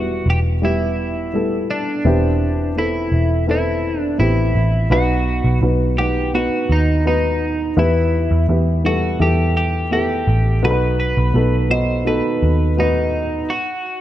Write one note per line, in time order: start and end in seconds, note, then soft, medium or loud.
0.00 0.23 E1 medium
0.00 0.22 E3 medium
0.00 0.62 G3 medium
0.00 0.62 B3 medium
0.00 0.63 E4 medium
0.00 0.29 F#4 medium
0.00 2.07 F#4 medium
0.26 1.65 E1 medium
0.30 0.39 G4 medium
0.62 1.26 G3 medium
0.62 1.26 B3 medium
0.62 1.26 E4 medium
0.62 1.70 E4 medium
0.62 1.26 G4 medium
1.33 1.97 G3 medium
1.33 1.97 B3 medium
1.33 1.98 E4 medium
1.33 1.98 A4 medium
1.71 2.78 D4 medium
2.05 3.08 E1 medium
2.05 3.09 E3 medium
2.05 2.69 B3 medium
2.05 2.69 C4 medium
2.05 2.69 E4 medium
2.05 2.69 G4 medium
2.76 3.40 B3 medium
2.76 3.40 C4 medium
2.76 3.41 E4 medium
2.76 3.45 E4 medium
2.76 3.41 A4 medium
3.12 4.15 E1 medium
3.47 4.11 B3 medium
3.47 4.12 C4 medium
3.47 4.12 E4 medium
3.47 4.00 E4 medium
3.47 4.12 A4 medium
4.00 4.17 D4 medium
4.18 4.53 A1 medium
4.18 4.82 B3 medium
4.18 4.83 C4 medium
4.18 4.83 E4 medium
4.18 4.93 E4 medium
4.18 4.83 G4 medium
4.55 4.89 A1 medium
4.90 5.41 B1 medium
4.90 5.95 B2 medium
4.90 5.54 B3 medium
4.90 5.55 D#4 medium
4.90 5.55 F#4 medium
4.90 5.59 F#4 medium
4.90 5.55 B4 loud
5.44 5.61 B1 medium
5.62 6.48 B1 medium
5.62 5.94 B3 medium
5.62 5.94 D#4 medium
5.62 5.95 F#4 medium
5.62 5.95 B4 medium
5.97 6.30 B3 medium
5.97 6.30 D#4 medium
5.97 6.32 G4 medium
5.97 6.31 B4 medium
5.97 6.30 F#5 medium
6.34 6.97 B3 medium
6.34 6.98 D#4 medium
6.34 6.98 F#4 medium
6.34 6.71 F#4 medium
6.34 6.98 B4 medium
6.69 7.73 D#2 medium
6.69 7.06 D#4 medium
7.05 7.69 B3 medium
7.05 7.69 D#4 medium
7.05 7.79 D#4 medium
7.05 7.70 F#4 medium
7.05 7.70 B4 medium
7.77 8.27 E2 medium
7.77 8.81 E3 medium
7.77 8.40 B3 medium
7.77 8.41 E4 medium
7.77 8.46 E4 medium
7.77 8.41 G4 medium
7.77 8.41 B4 medium
8.31 8.48 E2 medium
8.48 9.16 E2 medium
8.48 8.80 B3 medium
8.48 8.81 E4 medium
8.48 8.81 G4 medium
8.48 8.81 B4 medium
8.84 9.17 G3 medium
8.84 9.16 B3 medium
8.84 9.16 E4 medium
8.84 9.19 F#4 medium
8.84 9.17 A4 medium
9.19 10.23 E2 medium
9.19 9.83 B3 medium
9.19 9.84 E4 medium
9.19 9.84 G4 medium
9.19 9.54 G4 medium
9.19 9.84 A4 medium
9.57 9.92 G4 medium
9.91 10.55 B3 medium
9.91 10.55 E4 medium
9.91 10.56 G4 medium
9.91 10.64 G4 medium
9.91 10.56 A4 medium
10.27 10.61 A1 medium
10.63 11.13 B1 loud
10.63 11.67 B2 medium
10.63 11.26 B3 medium
10.63 11.27 D#4 medium
10.63 11.27 F#4 medium
10.63 10.70 A4 medium
10.63 10.99 B4 loud
10.71 11.30 B4 loud
11.00 11.71 B4 medium
11.17 11.34 B1 medium
11.34 12.20 B1 loud
11.34 11.66 B3 medium
11.34 11.66 D#4 medium
11.34 11.67 F#4 medium
11.34 11.67 A4 medium
11.69 12.02 B2 medium
11.69 12.02 D#4 medium
11.69 12.02 F#4 medium
11.69 12.07 C5 medium
11.69 12.02 D#5 medium
12.05 12.69 B3 medium
12.05 12.69 D#4 medium
12.05 12.70 F#4 medium
12.05 12.70 A4 medium
12.05 12.80 B4 medium
12.43 13.45 D#2 medium
12.77 13.41 B3 medium
12.77 13.41 D#4 medium
12.77 13.52 D#4 medium
12.77 13.41 F#4 medium
12.77 13.42 B4 medium
13.50 14.01 F#4 medium